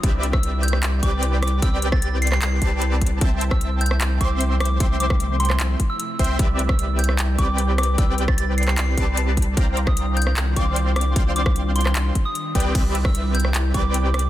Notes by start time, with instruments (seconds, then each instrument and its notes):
Already playing: ambient pad C3 G3 E4 B4
0.03 sub bass C2, supersaw synth C4 G4 B4 D5 E5, kick, closed hi-hat
0.23 closed hi-hat
0.33 synth bell E6, kick, cross-stick
0.43 closed hi-hat
0.63 synth bell G6, closed hi-hat
0.68 closed hi-hat
0.73 cross-stick
0.83 clap, closed hi-hat
1.03 sub bass C2, supersaw synth C4 G4 B4 D5 G5, synth bell D6, kick, closed hi-hat
1.23 closed hi-hat
1.42 synth bell D6, cross-stick, closed hi-hat
1.48 closed hi-hat
1.62 sub bass C2, supersaw synth C4 G4 B4 D5 G5, synth bell E6, kick, closed hi-hat
1.82 closed hi-hat
1.92 synth bell A6, kick, cross-stick
2.02 synth bell A6, closed hi-hat
2.22 synth bell C7, closed hi-hat
2.27 closed hi-hat
2.32 synth bell C7, cross-stick, clap
2.42 synth bell C7, clap, closed hi-hat
2.62 sub bass C2, supersaw synth C4 G4 B4 D5 A5, kick, closed hi-hat
2.82 closed hi-hat
3.01 kick, closed hi-hat
3.07 closed hi-hat
3.21 sub bass C2, ambient pad F3 A3, supersaw synth C4 C5 E5 G5 A5, kick, closed hi-hat
3.41 closed hi-hat
3.51 synth bell E6, kick, cross-stick
3.61 closed hi-hat
3.81 synth bell G6, closed hi-hat
3.86 closed hi-hat
3.91 cross-stick
4.01 clap, closed hi-hat
4.21 sub bass C2, supersaw synth C4 C5 E5 G5 C6, synth bell D6, kick, closed hi-hat
4.41 closed hi-hat
4.60 synth bell D6, cross-stick, closed hi-hat
4.65 closed hi-hat
4.80 sub bass C2, supersaw synth C4 C5 E5 G5 C6, kick, closed hi-hat
5.00 synth bell D6, closed hi-hat
5.10 kick, cross-stick
5.20 closed hi-hat
5.40 synth bell C6, closed hi-hat
5.45 closed hi-hat
5.50 cross-stick, clap
5.60 clap, closed hi-hat
5.80 kick, closed hi-hat
5.90 synth bell E6
6.00 closed hi-hat
6.19 sub bass C2, supersaw synth C4 C5 E5 G5 C6, kick, closed hi-hat
6.24 closed hi-hat
6.39 sub bass C2, ambient pad G3 B4, supersaw synth C4 G4 B4 D5 E5, kick, closed hi-hat
6.59 closed hi-hat
6.69 synth bell E6, kick, cross-stick
6.79 closed hi-hat
6.99 synth bell G6, closed hi-hat
7.04 closed hi-hat
7.09 cross-stick
7.19 clap, closed hi-hat
7.38 sub bass C2, supersaw synth C4 G4 B4 D5 G5, synth bell D6, kick, closed hi-hat
7.58 closed hi-hat
7.78 synth bell D6, cross-stick, closed hi-hat
7.83 closed hi-hat
7.98 sub bass C2, supersaw synth C4 G4 B4 D5 G5, synth bell E6, kick, closed hi-hat
8.18 closed hi-hat
8.28 synth bell A6, kick, cross-stick
8.38 synth bell A6, closed hi-hat
8.58 synth bell C7, closed hi-hat
8.63 closed hi-hat
8.68 synth bell C7, cross-stick, clap
8.78 synth bell C7, clap, closed hi-hat
8.97 sub bass C2, supersaw synth C4 G4 B4 D5 A5, kick, closed hi-hat
9.17 closed hi-hat
9.37 kick, closed hi-hat
9.42 closed hi-hat
9.57 sub bass C2, ambient pad D#3 G3 D4 F4, supersaw synth C4 C5 D5 F5 G5 A#5, kick, closed hi-hat
9.77 closed hi-hat
9.87 synth bell D#6, kick, cross-stick
9.97 closed hi-hat
10.17 synth bell G6, closed hi-hat
10.22 closed hi-hat
10.27 cross-stick
10.37 clap, closed hi-hat
10.56 sub bass C2, supersaw synth C4 C5 D5 F5 G5 C6, synth bell D6, kick, closed hi-hat
10.76 closed hi-hat
10.96 synth bell D6, cross-stick, closed hi-hat
11.01 closed hi-hat
11.16 sub bass C2, supersaw synth C4 C5 D5 F5 G5 C6, kick, closed hi-hat
11.36 synth bell D6, closed hi-hat
11.46 kick, cross-stick
11.56 closed hi-hat
11.76 synth bell C6, closed hi-hat
11.81 closed hi-hat
11.86 cross-stick, clap
11.95 clap, closed hi-hat
12.15 kick, closed hi-hat
12.25 synth bell D#6
12.35 closed hi-hat
12.55 sub bass C2, ambient pad C3 E4 B4, supersaw synth C4 G4 B4 D5 G5, kick, closed hi-hat
12.60 closed hi-hat
12.75 sub bass C2, supersaw synth C4 G4 B4 D5 E5, kick, closed hi-hat, ride
12.95 closed hi-hat
13.05 synth bell E6, kick, cross-stick
13.15 closed hi-hat
13.35 synth bell G6, closed hi-hat
13.40 closed hi-hat
13.45 cross-stick
13.55 clap, closed hi-hat
13.74 sub bass C2, supersaw synth C4 G4 B4 D5 G5, synth bell D6, kick, closed hi-hat
13.94 closed hi-hat
14.14 synth bell D6, cross-stick, closed hi-hat
14.19 closed hi-hat